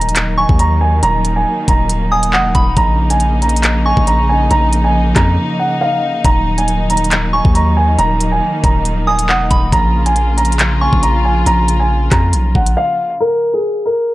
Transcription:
Already playing: 808-style bass D#1, string section D#3 F#3 A#3 D#4, grand piano A#5, impact
0.01 closed hi-hat
0.09 closed hi-hat
0.16 clap, closed hi-hat
0.38 grand piano G#5, synth bell C#6
0.49 808-style bass D#2, kick
0.59 grand piano A#5, closed hi-hat
0.81 grand piano G#5
1.03 808-style bass D#1, grand piano A#5, closed hi-hat
1.25 closed hi-hat
1.36 grand piano G#5
1.68 808-style bass D#1, grand piano A#5, kick, closed hi-hat
1.90 closed hi-hat
2.11 grand piano G#5, synth bell D#6
2.23 closed hi-hat
2.33 808-style bass F1, grand piano F#5, clap
2.45 808-style bass D#1
2.55 808-style bass D#1, synth bell B5, kick, closed hi-hat
2.77 808-style bass A#1, string section C#3 F3, grand piano A#5, kick, closed hi-hat
3.10 grand piano G#5, closed hi-hat
3.20 closed hi-hat
3.42 grand piano A#5, closed hi-hat
3.49 closed hi-hat
3.56 closed hi-hat
3.63 clap, closed hi-hat
3.85 grand piano G#5, synth bell C#6
3.97 808-style bass A#1, kick
4.07 grand piano A#5, closed hi-hat
4.29 grand piano G#5
4.51 808-style bass A#1, grand piano A#5, closed hi-hat
4.73 closed hi-hat
4.84 grand piano G#5
5.16 808-style bass F2, grand piano A#5, kick, cross-stick, clap, closed hi-hat
5.59 grand piano F#5
5.81 grand piano F5
6.25 808-style bass D#1, string section D#3 F#3 A#3, grand piano A#5, kick, closed hi-hat
6.58 grand piano G#5, closed hi-hat
6.68 closed hi-hat
6.90 grand piano A#5, closed hi-hat
6.97 closed hi-hat
7.04 closed hi-hat
7.11 clap, closed hi-hat
7.33 grand piano G#5, synth bell C#6
7.45 808-style bass D#2, kick
7.55 grand piano A#5, closed hi-hat
7.77 grand piano G#5
7.98 808-style bass D#1, grand piano A#5, closed hi-hat
8.21 closed hi-hat
8.32 grand piano G#5
8.64 808-style bass D#1, grand piano A#5, kick, closed hi-hat
8.85 closed hi-hat
9.07 grand piano G#5, synth bell D#6
9.19 closed hi-hat
9.29 808-style bass F1, grand piano F#5, clap
9.40 808-style bass D#1
9.51 808-style bass D#1, synth bell B5, kick, closed hi-hat
9.72 808-style bass A#1, string section C#3 F3 F4, grand piano A#5, kick, closed hi-hat
10.06 grand piano G#5, closed hi-hat
10.16 closed hi-hat
10.37 grand piano A#5, closed hi-hat
10.45 closed hi-hat
10.52 closed hi-hat
10.59 clap, closed hi-hat
10.81 grand piano G#5, synth bell C#6
10.93 808-style bass A#1, kick
11.03 grand piano A#5, closed hi-hat
11.25 grand piano G#5
11.46 808-style bass A#1, grand piano A#5, closed hi-hat
11.68 closed hi-hat
11.80 grand piano G#5
12.12 808-style bass F2, grand piano A#5, kick, cross-stick, clap, closed hi-hat
12.33 808-style bass B1, closed hi-hat
12.55 808-style bass A#1, grand piano F#5, kick
12.66 closed hi-hat
12.77 grand piano F5
13.20 grand piano A#4
13.54 grand piano G#4
13.86 grand piano A#4

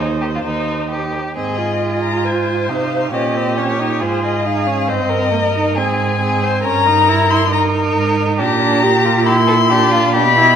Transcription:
Already playing: cello D#2
0.00 viola D#4, violin C5
0.22 violin G4
0.35 violin F4
0.45 cello D#2, viola D#4, violin D#4
0.91 violin G4
1.35 cello G#2, viola C4, violin G#4 D#5
1.58 viola F4
1.81 violin G#4
2.03 violin A#5
2.24 violin C5 G#5
2.69 cello C3, viola D#4, violin F5
3.12 cello A#2, viola C#4, violin G4 D#5
3.36 viola C4
3.57 viola C#4, violin C#5
3.79 viola D#4
4.00 cello G#2, viola F4, violin G#4 C5
4.24 violin D#5
4.44 viola D#4, violin G#4 F5
4.66 viola C#4
4.88 cello G2, viola C4, violin C5 D#5
5.09 violin A#4
5.31 viola A#3, violin A#4
5.55 viola D#4
5.76 cello G#2, viola C4, violin G#4 G#5
6.21 viola C4, violin G#4
6.43 violin C5
6.65 cello G2, viola C#4, violin A#4 A#5
6.87 viola D#4
7.08 viola E4
7.30 viola E4, violin C6
7.52 viola D#4, violin A#4 A#5
7.96 cello G#2
8.39 cello A#2, viola D4, violin G4 A#5
8.61 viola D4
8.83 viola G4
9.05 viola F4
9.26 viola E4, violin G4 C6
9.48 violin A4
9.69 viola D4, violin G4
9.91 violin F4
10.13 cello B2, viola D4, violin G4 B5
10.37 viola E4

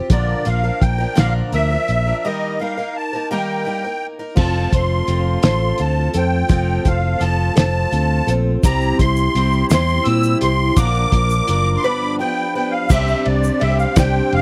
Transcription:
Already playing: twelve-string acoustic guitar C4 F4 G4
0.10 fingered electric bass A#1, twelve-string acoustic guitar A#2 D3 F3 A#3 D4 A#4, accordion D5, kick, closed hi-hat
0.45 fingered electric bass A#1, twelve-string acoustic guitar F3 A#3 D4 A#4, accordion F5, closed hi-hat
0.64 twelve-string acoustic guitar F3 A#3 D4 A#4
0.82 fingered electric bass A#1, accordion G5, kick, closed hi-hat
0.98 twelve-string acoustic guitar F3 A#3 D4 A#4
1.15 fingered electric bass A#1, twelve-string acoustic guitar A#2 D3 F3 A#3 D4 A#4, accordion F5, snare, closed hi-hat
1.52 fingered electric bass D2, twelve-string acoustic guitar F3 A#3 D4 A#4, accordion E5, closed hi-hat
1.70 twelve-string acoustic guitar F3 A#3 D4 A#4
1.88 fingered electric bass A#1, closed hi-hat
2.06 twelve-string acoustic guitar F3 A#3 D4 A#4
2.24 twelve-string acoustic guitar D#3 G3 A#3 D#4 A#4, accordion D#5
2.59 twelve-string acoustic guitar G3 A#3 D#4 A#4, accordion F5
2.78 twelve-string acoustic guitar A#3 D#4 A#4
2.96 accordion A5
3.13 twelve-string acoustic guitar A#3 D#4 A#4
3.31 twelve-string acoustic guitar D#3 G3 A#3 D#4 A#4, accordion G5
3.65 twelve-string acoustic guitar G3 A#3 D#4 A#4
3.84 twelve-string acoustic guitar A#3 D#4 A#4
4.19 twelve-string acoustic guitar A#3 D#4 A#4
4.35 fingered electric bass F1, twelve-string acoustic guitar F3 C4 F4 A4, tonewheel organ A3 C4 F4 C5, kick, crash
4.39 accordion A5
4.70 fingered electric bass F1, twelve-string acoustic guitar C4 F4 A4, kick, closed hi-hat
4.74 accordion C6
5.07 fingered electric bass F1, twelve-string acoustic guitar F3 C4 F4 A4, closed hi-hat
5.43 fingered electric bass A1, twelve-string acoustic guitar F3 C4 F4 A4, accordion C6, snare, closed hi-hat
5.78 fingered electric bass D2, twelve-string acoustic guitar F3 C4 F4 A4, accordion A5, closed hi-hat
6.14 fingered electric bass F2, twelve-string acoustic guitar C4 F4 A4, accordion G5, closed hi-hat
6.48 fingered electric bass F1, twelve-string acoustic guitar F3 C4 F4 A4, kick, closed hi-hat
6.85 fingered electric bass F1, twelve-string acoustic guitar C4 F4 A4, accordion F5, kick, closed hi-hat
7.20 fingered electric bass F1, twelve-string acoustic guitar F3 C4 F4 A4, accordion A5, closed hi-hat
7.55 fingered electric bass F1, twelve-string acoustic guitar F3 C4 F4 A4, accordion A5, snare, closed hi-hat
7.91 fingered electric bass D2, twelve-string acoustic guitar F3 C4 F4 A4, closed hi-hat
8.27 fingered electric bass A#1, twelve-string acoustic guitar C4 F4 A4, closed hi-hat
8.63 fingered electric bass C2, twelve-string acoustic guitar C3 G3 C4 E4 G4, tonewheel organ G3, accordion A#5, kick, closed hi-hat, shaker
8.81 shaker
8.99 fingered electric bass C2, twelve-string acoustic guitar C4 E4 G4, accordion C6, kick, closed hi-hat
9.16 shaker
9.35 fingered electric bass C2, twelve-string acoustic guitar G3 C4 E4 G4, closed hi-hat
9.52 shaker
9.69 fingered electric bass E2, twelve-string acoustic guitar C3 G3 C4 E4 G4, accordion C6, snare, closed hi-hat, shaker
9.88 shaker
10.04 fingered electric bass A#2, twelve-string acoustic guitar G3 C4 E4 G4, accordion E6, closed hi-hat
10.23 shaker
10.41 fingered electric bass C2, twelve-string acoustic guitar C4 E4 G4, accordion C6, closed hi-hat
10.77 fingered electric bass A#1, twelve-string acoustic guitar A#2 D3 F3 A#3 D4 A#4, tonewheel organ F3 A#3 D4 A#4, accordion D6, kick, closed hi-hat, shaker
10.95 shaker
11.12 fingered electric bass A#1, twelve-string acoustic guitar F3 A#3 D4 A#4, kick, closed hi-hat
11.30 shaker
11.47 fingered electric bass F#1, twelve-string acoustic guitar F3 A#3 D4 A#4, closed hi-hat, shaker
11.77 accordion C6
11.83 twelve-string acoustic guitar G2 D3 F3 B3 D4 B4, tonewheel organ B3 G4, accordion B5
12.19 twelve-string acoustic guitar F3 B3 D4 B4, accordion G5
12.55 twelve-string acoustic guitar F3 B3 D4 B4, accordion G5
12.71 accordion F5
12.89 fingered electric bass C2, twelve-string acoustic guitar C3 G3 C4 D4 G4, tonewheel organ G3 C4 D4 C5, accordion E5, kick, crash, shaker
13.08 shaker
13.25 fingered electric bass C2, accordion D5, ride
13.44 shaker
13.60 fingered electric bass C2, twelve-string acoustic guitar G3 C4 D4 G4, accordion E5, ride
13.79 accordion F5, shaker
13.96 fingered electric bass C2, twelve-string acoustic guitar C3 G3 C4 D4 G4, accordion G5, kick, snare, ride, shaker
14.32 fingered electric bass F1, accordion F5, ride

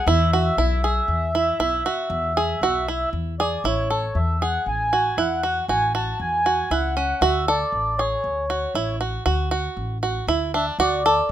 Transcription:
0.07 upright bass E2, five-string banjo E4, accordion E5
0.33 five-string banjo F#4
0.57 upright bass B1, five-string banjo E4
0.84 five-string banjo G#4
1.08 upright bass E2
1.35 five-string banjo E4
1.59 upright bass B1, five-string banjo E4
1.86 five-string banjo F#4
2.10 upright bass E2
2.37 five-string banjo G#4
2.61 upright bass B1, five-string banjo F#4
2.88 five-string banjo E4
3.13 upright bass E2
3.40 five-string banjo G#4, accordion D5
3.64 upright bass A1, five-string banjo E4, accordion C#5
3.90 five-string banjo A4
4.15 upright bass E2, accordion E5
4.42 five-string banjo G#4, accordion F#5
4.66 upright bass A1, accordion G#5
4.93 five-string banjo F#4
5.17 upright bass E2, five-string banjo E4, accordion F#5
5.43 five-string banjo F#4
5.68 upright bass A1, five-string banjo F#4, accordion G#5
5.95 five-string banjo F#4, accordion A5
6.20 upright bass E2, accordion G#5
6.46 five-string banjo F#4
6.70 upright bass C#2, five-string banjo E4, accordion F#5
6.97 five-string banjo C#4
7.21 upright bass D2, five-string banjo F#4, accordion E5
7.48 five-string banjo A4, accordion D5
7.72 upright bass A1
7.98 five-string banjo G#4, accordion C#5
8.24 upright bass D2
8.50 five-string banjo F#4
8.75 upright bass A1, five-string banjo E4
9.01 five-string banjo F#4
9.26 upright bass D2, five-string banjo F#4
9.51 five-string banjo F#4
9.77 upright bass A1
10.03 five-string banjo F#4
10.27 upright bass D2, five-string banjo E4
10.54 five-string banjo D4, accordion E5
10.79 upright bass D2, five-string banjo F#4, accordion D5
11.06 five-string banjo A4

